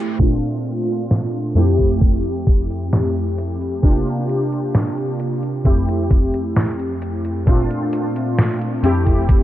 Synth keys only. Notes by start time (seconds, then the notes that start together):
Already playing: A3 C4 E4 G4
0.19 A#2 A3 C4 D4 F4
1.55 F2 A3 C4 E4 G4
3.82 C3 A#3 D4 F4 G4
5.64 F2 A3 C4 E4 G4
7.46 A#2 A3 C4 D4 F4
8.83 F2 A3 C4 E4 G4